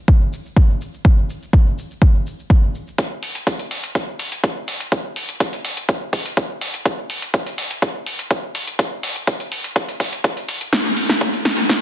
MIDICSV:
0, 0, Header, 1, 2, 480
1, 0, Start_track
1, 0, Tempo, 483871
1, 1041, Time_signature, 4, 2, 24, 8
1, 11718, End_track
2, 0, Start_track
2, 0, Title_t, "Drums"
2, 80, Note_on_c, 9, 36, 111
2, 88, Note_on_c, 9, 82, 47
2, 180, Note_off_c, 9, 36, 0
2, 187, Note_off_c, 9, 82, 0
2, 213, Note_on_c, 9, 82, 23
2, 312, Note_off_c, 9, 82, 0
2, 328, Note_on_c, 9, 82, 82
2, 427, Note_off_c, 9, 82, 0
2, 453, Note_on_c, 9, 82, 34
2, 552, Note_off_c, 9, 82, 0
2, 560, Note_on_c, 9, 36, 108
2, 569, Note_on_c, 9, 82, 46
2, 660, Note_off_c, 9, 36, 0
2, 668, Note_off_c, 9, 82, 0
2, 694, Note_on_c, 9, 82, 21
2, 793, Note_off_c, 9, 82, 0
2, 808, Note_on_c, 9, 82, 77
2, 907, Note_off_c, 9, 82, 0
2, 933, Note_on_c, 9, 82, 34
2, 1032, Note_off_c, 9, 82, 0
2, 1040, Note_on_c, 9, 36, 111
2, 1049, Note_on_c, 9, 82, 45
2, 1140, Note_off_c, 9, 36, 0
2, 1148, Note_off_c, 9, 82, 0
2, 1174, Note_on_c, 9, 82, 23
2, 1273, Note_off_c, 9, 82, 0
2, 1289, Note_on_c, 9, 82, 74
2, 1388, Note_off_c, 9, 82, 0
2, 1413, Note_on_c, 9, 82, 34
2, 1513, Note_off_c, 9, 82, 0
2, 1520, Note_on_c, 9, 36, 112
2, 1529, Note_on_c, 9, 82, 43
2, 1620, Note_off_c, 9, 36, 0
2, 1628, Note_off_c, 9, 82, 0
2, 1654, Note_on_c, 9, 82, 23
2, 1753, Note_off_c, 9, 82, 0
2, 1769, Note_on_c, 9, 82, 83
2, 1868, Note_off_c, 9, 82, 0
2, 1894, Note_on_c, 9, 82, 34
2, 1993, Note_off_c, 9, 82, 0
2, 2001, Note_on_c, 9, 36, 106
2, 2009, Note_on_c, 9, 82, 45
2, 2100, Note_off_c, 9, 36, 0
2, 2108, Note_off_c, 9, 82, 0
2, 2133, Note_on_c, 9, 82, 22
2, 2232, Note_off_c, 9, 82, 0
2, 2248, Note_on_c, 9, 82, 75
2, 2347, Note_off_c, 9, 82, 0
2, 2373, Note_on_c, 9, 82, 33
2, 2472, Note_off_c, 9, 82, 0
2, 2480, Note_on_c, 9, 36, 113
2, 2488, Note_on_c, 9, 82, 44
2, 2580, Note_off_c, 9, 36, 0
2, 2587, Note_off_c, 9, 82, 0
2, 2613, Note_on_c, 9, 82, 21
2, 2712, Note_off_c, 9, 82, 0
2, 2727, Note_on_c, 9, 82, 81
2, 2826, Note_off_c, 9, 82, 0
2, 2853, Note_on_c, 9, 82, 34
2, 2952, Note_off_c, 9, 82, 0
2, 2960, Note_on_c, 9, 36, 118
2, 2961, Note_on_c, 9, 42, 81
2, 2968, Note_on_c, 9, 82, 46
2, 3060, Note_off_c, 9, 36, 0
2, 3060, Note_off_c, 9, 42, 0
2, 3067, Note_off_c, 9, 82, 0
2, 3093, Note_on_c, 9, 82, 22
2, 3192, Note_off_c, 9, 82, 0
2, 3201, Note_on_c, 9, 46, 104
2, 3208, Note_on_c, 9, 82, 75
2, 3300, Note_off_c, 9, 46, 0
2, 3307, Note_off_c, 9, 82, 0
2, 3326, Note_on_c, 9, 42, 52
2, 3333, Note_on_c, 9, 82, 34
2, 3425, Note_off_c, 9, 42, 0
2, 3432, Note_off_c, 9, 82, 0
2, 3440, Note_on_c, 9, 36, 121
2, 3441, Note_on_c, 9, 42, 76
2, 3448, Note_on_c, 9, 82, 41
2, 3540, Note_off_c, 9, 36, 0
2, 3540, Note_off_c, 9, 42, 0
2, 3547, Note_off_c, 9, 82, 0
2, 3565, Note_on_c, 9, 42, 38
2, 3573, Note_on_c, 9, 82, 22
2, 3665, Note_off_c, 9, 42, 0
2, 3672, Note_off_c, 9, 82, 0
2, 3680, Note_on_c, 9, 46, 105
2, 3687, Note_on_c, 9, 82, 79
2, 3779, Note_off_c, 9, 46, 0
2, 3787, Note_off_c, 9, 82, 0
2, 3806, Note_on_c, 9, 42, 53
2, 3813, Note_on_c, 9, 82, 34
2, 3905, Note_off_c, 9, 42, 0
2, 3912, Note_off_c, 9, 82, 0
2, 3920, Note_on_c, 9, 36, 118
2, 3921, Note_on_c, 9, 42, 84
2, 3928, Note_on_c, 9, 82, 43
2, 4019, Note_off_c, 9, 36, 0
2, 4020, Note_off_c, 9, 42, 0
2, 4027, Note_off_c, 9, 82, 0
2, 4053, Note_on_c, 9, 82, 22
2, 4152, Note_off_c, 9, 82, 0
2, 4161, Note_on_c, 9, 46, 103
2, 4168, Note_on_c, 9, 82, 77
2, 4260, Note_off_c, 9, 46, 0
2, 4267, Note_off_c, 9, 82, 0
2, 4286, Note_on_c, 9, 42, 51
2, 4293, Note_on_c, 9, 82, 33
2, 4385, Note_off_c, 9, 42, 0
2, 4392, Note_off_c, 9, 82, 0
2, 4400, Note_on_c, 9, 36, 121
2, 4401, Note_on_c, 9, 42, 78
2, 4408, Note_on_c, 9, 82, 43
2, 4500, Note_off_c, 9, 36, 0
2, 4500, Note_off_c, 9, 42, 0
2, 4507, Note_off_c, 9, 82, 0
2, 4533, Note_on_c, 9, 82, 21
2, 4632, Note_off_c, 9, 82, 0
2, 4641, Note_on_c, 9, 46, 104
2, 4649, Note_on_c, 9, 82, 77
2, 4741, Note_off_c, 9, 46, 0
2, 4748, Note_off_c, 9, 82, 0
2, 4766, Note_on_c, 9, 42, 54
2, 4773, Note_on_c, 9, 82, 33
2, 4865, Note_off_c, 9, 42, 0
2, 4872, Note_off_c, 9, 82, 0
2, 4880, Note_on_c, 9, 36, 123
2, 4882, Note_on_c, 9, 42, 81
2, 4889, Note_on_c, 9, 82, 42
2, 4980, Note_off_c, 9, 36, 0
2, 4981, Note_off_c, 9, 42, 0
2, 4988, Note_off_c, 9, 82, 0
2, 5013, Note_on_c, 9, 82, 22
2, 5112, Note_off_c, 9, 82, 0
2, 5120, Note_on_c, 9, 46, 102
2, 5128, Note_on_c, 9, 82, 73
2, 5220, Note_off_c, 9, 46, 0
2, 5227, Note_off_c, 9, 82, 0
2, 5246, Note_on_c, 9, 42, 55
2, 5253, Note_on_c, 9, 82, 33
2, 5345, Note_off_c, 9, 42, 0
2, 5352, Note_off_c, 9, 82, 0
2, 5360, Note_on_c, 9, 36, 121
2, 5361, Note_on_c, 9, 42, 74
2, 5368, Note_on_c, 9, 82, 42
2, 5460, Note_off_c, 9, 36, 0
2, 5460, Note_off_c, 9, 42, 0
2, 5467, Note_off_c, 9, 82, 0
2, 5486, Note_on_c, 9, 42, 36
2, 5493, Note_on_c, 9, 82, 21
2, 5585, Note_off_c, 9, 42, 0
2, 5592, Note_off_c, 9, 82, 0
2, 5601, Note_on_c, 9, 46, 108
2, 5608, Note_on_c, 9, 82, 76
2, 5700, Note_off_c, 9, 46, 0
2, 5707, Note_off_c, 9, 82, 0
2, 5725, Note_on_c, 9, 42, 54
2, 5732, Note_on_c, 9, 82, 31
2, 5825, Note_off_c, 9, 42, 0
2, 5832, Note_off_c, 9, 82, 0
2, 5840, Note_on_c, 9, 36, 124
2, 5841, Note_on_c, 9, 42, 80
2, 5848, Note_on_c, 9, 82, 42
2, 5940, Note_off_c, 9, 36, 0
2, 5940, Note_off_c, 9, 42, 0
2, 5947, Note_off_c, 9, 82, 0
2, 5973, Note_on_c, 9, 82, 21
2, 6072, Note_off_c, 9, 82, 0
2, 6080, Note_on_c, 9, 36, 60
2, 6081, Note_on_c, 9, 46, 107
2, 6088, Note_on_c, 9, 82, 74
2, 6180, Note_off_c, 9, 36, 0
2, 6180, Note_off_c, 9, 46, 0
2, 6188, Note_off_c, 9, 82, 0
2, 6206, Note_on_c, 9, 42, 50
2, 6213, Note_on_c, 9, 82, 31
2, 6305, Note_off_c, 9, 42, 0
2, 6312, Note_off_c, 9, 82, 0
2, 6320, Note_on_c, 9, 36, 124
2, 6321, Note_on_c, 9, 42, 78
2, 6328, Note_on_c, 9, 82, 42
2, 6420, Note_off_c, 9, 36, 0
2, 6420, Note_off_c, 9, 42, 0
2, 6427, Note_off_c, 9, 82, 0
2, 6453, Note_on_c, 9, 82, 21
2, 6552, Note_off_c, 9, 82, 0
2, 6561, Note_on_c, 9, 46, 106
2, 6568, Note_on_c, 9, 82, 77
2, 6660, Note_off_c, 9, 46, 0
2, 6668, Note_off_c, 9, 82, 0
2, 6686, Note_on_c, 9, 42, 51
2, 6693, Note_on_c, 9, 82, 31
2, 6785, Note_off_c, 9, 42, 0
2, 6792, Note_off_c, 9, 82, 0
2, 6800, Note_on_c, 9, 36, 120
2, 6801, Note_on_c, 9, 42, 77
2, 6808, Note_on_c, 9, 82, 44
2, 6899, Note_off_c, 9, 36, 0
2, 6900, Note_off_c, 9, 42, 0
2, 6907, Note_off_c, 9, 82, 0
2, 6933, Note_on_c, 9, 82, 22
2, 7032, Note_off_c, 9, 82, 0
2, 7041, Note_on_c, 9, 46, 107
2, 7048, Note_on_c, 9, 82, 72
2, 7140, Note_off_c, 9, 46, 0
2, 7147, Note_off_c, 9, 82, 0
2, 7165, Note_on_c, 9, 42, 51
2, 7173, Note_on_c, 9, 82, 32
2, 7265, Note_off_c, 9, 42, 0
2, 7272, Note_off_c, 9, 82, 0
2, 7280, Note_on_c, 9, 36, 119
2, 7280, Note_on_c, 9, 42, 71
2, 7288, Note_on_c, 9, 82, 40
2, 7379, Note_off_c, 9, 36, 0
2, 7379, Note_off_c, 9, 42, 0
2, 7387, Note_off_c, 9, 82, 0
2, 7405, Note_on_c, 9, 42, 35
2, 7412, Note_on_c, 9, 82, 22
2, 7504, Note_off_c, 9, 42, 0
2, 7512, Note_off_c, 9, 82, 0
2, 7520, Note_on_c, 9, 46, 117
2, 7527, Note_on_c, 9, 82, 75
2, 7619, Note_off_c, 9, 46, 0
2, 7627, Note_off_c, 9, 82, 0
2, 7645, Note_on_c, 9, 42, 52
2, 7652, Note_on_c, 9, 82, 31
2, 7744, Note_off_c, 9, 42, 0
2, 7751, Note_off_c, 9, 82, 0
2, 7760, Note_on_c, 9, 36, 126
2, 7760, Note_on_c, 9, 42, 77
2, 7768, Note_on_c, 9, 82, 44
2, 7859, Note_off_c, 9, 36, 0
2, 7860, Note_off_c, 9, 42, 0
2, 7867, Note_off_c, 9, 82, 0
2, 7892, Note_on_c, 9, 82, 21
2, 7991, Note_off_c, 9, 82, 0
2, 8000, Note_on_c, 9, 46, 111
2, 8008, Note_on_c, 9, 82, 74
2, 8100, Note_off_c, 9, 46, 0
2, 8107, Note_off_c, 9, 82, 0
2, 8125, Note_on_c, 9, 42, 49
2, 8133, Note_on_c, 9, 82, 31
2, 8224, Note_off_c, 9, 42, 0
2, 8232, Note_off_c, 9, 82, 0
2, 8240, Note_on_c, 9, 36, 126
2, 8240, Note_on_c, 9, 42, 76
2, 8247, Note_on_c, 9, 82, 40
2, 8339, Note_off_c, 9, 36, 0
2, 8339, Note_off_c, 9, 42, 0
2, 8346, Note_off_c, 9, 82, 0
2, 8372, Note_on_c, 9, 82, 20
2, 8471, Note_off_c, 9, 82, 0
2, 8480, Note_on_c, 9, 46, 111
2, 8487, Note_on_c, 9, 82, 75
2, 8580, Note_off_c, 9, 46, 0
2, 8587, Note_off_c, 9, 82, 0
2, 8605, Note_on_c, 9, 42, 53
2, 8613, Note_on_c, 9, 82, 31
2, 8705, Note_off_c, 9, 42, 0
2, 8712, Note_off_c, 9, 82, 0
2, 8720, Note_on_c, 9, 36, 125
2, 8720, Note_on_c, 9, 42, 78
2, 8728, Note_on_c, 9, 82, 45
2, 8819, Note_off_c, 9, 36, 0
2, 8820, Note_off_c, 9, 42, 0
2, 8827, Note_off_c, 9, 82, 0
2, 8852, Note_on_c, 9, 82, 22
2, 8952, Note_off_c, 9, 82, 0
2, 8961, Note_on_c, 9, 46, 110
2, 8968, Note_on_c, 9, 82, 73
2, 9060, Note_off_c, 9, 46, 0
2, 9067, Note_off_c, 9, 82, 0
2, 9085, Note_on_c, 9, 42, 51
2, 9092, Note_on_c, 9, 82, 34
2, 9184, Note_off_c, 9, 42, 0
2, 9192, Note_off_c, 9, 82, 0
2, 9200, Note_on_c, 9, 36, 120
2, 9200, Note_on_c, 9, 42, 71
2, 9208, Note_on_c, 9, 82, 41
2, 9299, Note_off_c, 9, 36, 0
2, 9300, Note_off_c, 9, 42, 0
2, 9307, Note_off_c, 9, 82, 0
2, 9326, Note_on_c, 9, 42, 37
2, 9333, Note_on_c, 9, 82, 22
2, 9425, Note_off_c, 9, 42, 0
2, 9432, Note_off_c, 9, 82, 0
2, 9441, Note_on_c, 9, 46, 110
2, 9448, Note_on_c, 9, 82, 80
2, 9540, Note_off_c, 9, 46, 0
2, 9547, Note_off_c, 9, 82, 0
2, 9566, Note_on_c, 9, 42, 51
2, 9573, Note_on_c, 9, 82, 32
2, 9665, Note_off_c, 9, 42, 0
2, 9672, Note_off_c, 9, 82, 0
2, 9680, Note_on_c, 9, 36, 125
2, 9682, Note_on_c, 9, 42, 75
2, 9689, Note_on_c, 9, 82, 43
2, 9780, Note_off_c, 9, 36, 0
2, 9781, Note_off_c, 9, 42, 0
2, 9788, Note_off_c, 9, 82, 0
2, 9806, Note_on_c, 9, 42, 35
2, 9814, Note_on_c, 9, 82, 22
2, 9906, Note_off_c, 9, 42, 0
2, 9913, Note_off_c, 9, 82, 0
2, 9920, Note_on_c, 9, 36, 64
2, 9921, Note_on_c, 9, 46, 107
2, 9928, Note_on_c, 9, 82, 72
2, 10020, Note_off_c, 9, 36, 0
2, 10020, Note_off_c, 9, 46, 0
2, 10028, Note_off_c, 9, 82, 0
2, 10046, Note_on_c, 9, 42, 50
2, 10054, Note_on_c, 9, 82, 33
2, 10146, Note_off_c, 9, 42, 0
2, 10153, Note_off_c, 9, 82, 0
2, 10160, Note_on_c, 9, 36, 126
2, 10161, Note_on_c, 9, 42, 74
2, 10168, Note_on_c, 9, 82, 41
2, 10260, Note_off_c, 9, 36, 0
2, 10260, Note_off_c, 9, 42, 0
2, 10267, Note_off_c, 9, 82, 0
2, 10286, Note_on_c, 9, 42, 33
2, 10293, Note_on_c, 9, 82, 21
2, 10385, Note_off_c, 9, 42, 0
2, 10393, Note_off_c, 9, 82, 0
2, 10401, Note_on_c, 9, 46, 110
2, 10409, Note_on_c, 9, 82, 77
2, 10501, Note_off_c, 9, 46, 0
2, 10508, Note_off_c, 9, 82, 0
2, 10526, Note_on_c, 9, 42, 51
2, 10533, Note_on_c, 9, 82, 33
2, 10625, Note_off_c, 9, 42, 0
2, 10632, Note_off_c, 9, 82, 0
2, 10641, Note_on_c, 9, 36, 117
2, 10641, Note_on_c, 9, 38, 51
2, 10641, Note_on_c, 9, 42, 75
2, 10649, Note_on_c, 9, 82, 45
2, 10740, Note_off_c, 9, 36, 0
2, 10741, Note_off_c, 9, 38, 0
2, 10741, Note_off_c, 9, 42, 0
2, 10748, Note_off_c, 9, 82, 0
2, 10773, Note_on_c, 9, 82, 23
2, 10872, Note_off_c, 9, 82, 0
2, 10881, Note_on_c, 9, 46, 100
2, 10888, Note_on_c, 9, 82, 77
2, 10980, Note_off_c, 9, 46, 0
2, 10987, Note_off_c, 9, 82, 0
2, 11006, Note_on_c, 9, 38, 44
2, 11006, Note_on_c, 9, 42, 51
2, 11013, Note_on_c, 9, 82, 34
2, 11105, Note_off_c, 9, 38, 0
2, 11105, Note_off_c, 9, 42, 0
2, 11113, Note_off_c, 9, 82, 0
2, 11121, Note_on_c, 9, 36, 115
2, 11122, Note_on_c, 9, 42, 76
2, 11129, Note_on_c, 9, 82, 43
2, 11220, Note_off_c, 9, 36, 0
2, 11221, Note_off_c, 9, 42, 0
2, 11228, Note_off_c, 9, 82, 0
2, 11247, Note_on_c, 9, 42, 36
2, 11254, Note_on_c, 9, 82, 23
2, 11346, Note_off_c, 9, 42, 0
2, 11353, Note_off_c, 9, 82, 0
2, 11361, Note_on_c, 9, 38, 53
2, 11361, Note_on_c, 9, 46, 108
2, 11369, Note_on_c, 9, 82, 81
2, 11460, Note_off_c, 9, 38, 0
2, 11460, Note_off_c, 9, 46, 0
2, 11468, Note_off_c, 9, 82, 0
2, 11486, Note_on_c, 9, 42, 51
2, 11494, Note_on_c, 9, 82, 35
2, 11585, Note_off_c, 9, 42, 0
2, 11593, Note_off_c, 9, 82, 0
2, 11601, Note_on_c, 9, 36, 118
2, 11602, Note_on_c, 9, 38, 51
2, 11602, Note_on_c, 9, 42, 79
2, 11609, Note_on_c, 9, 82, 46
2, 11700, Note_off_c, 9, 36, 0
2, 11701, Note_off_c, 9, 38, 0
2, 11701, Note_off_c, 9, 42, 0
2, 11708, Note_off_c, 9, 82, 0
2, 11718, End_track
0, 0, End_of_file